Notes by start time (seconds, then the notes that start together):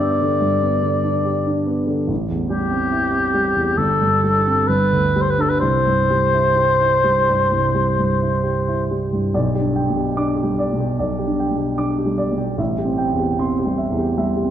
Already playing: G2 D3 D4 G4 D5
0.00 B3
0.21 D3
0.41 G2
0.62 B3
0.82 D3
1.04 D4
1.25 G4
1.47 D4
1.67 B3
1.87 D3
2.08 A1
2.29 E2
2.49 G3 G4
2.71 C4
2.92 E4
3.12 C4
3.34 G3
3.56 E2
3.78 G1 A4
4.01 G2
4.24 G3
4.47 C4
4.68 G1 B4
4.92 D2
5.16 G3
5.21 C5
5.30 B4
5.38 D4 A4
5.49 B4
5.60 C2 C5
5.86 G2
6.10 G3
6.34 E4
6.56 G4
6.80 E4
7.04 G3
7.29 G2
7.51 C2
7.75 G3
7.98 G2
8.22 E4
8.43 G4
8.68 E4
8.91 G3
9.13 G2
9.34 B1 D5
9.55 G4
9.61 D4
9.76 G5
9.89 B2
9.96 G4
10.17 D4 D6
10.36 G4
10.43 G3
10.59 D5
10.73 B2
10.80 G4
10.99 B1 D5
11.19 G4
11.27 D4
11.40 G5
11.51 B2
11.57 G4
11.77 D4 D6
11.98 G4
12.06 G3
12.18 D5
12.32 B2
12.38 G4
12.58 A1 E5
12.78 G4
12.85 C4
12.98 G5
13.12 E2
13.19 G4
13.39 C4 C6
13.59 G4
13.65 G3
13.78 E5
13.91 E2
13.98 G4
14.17 G3 E5
14.36 G4
14.45 C4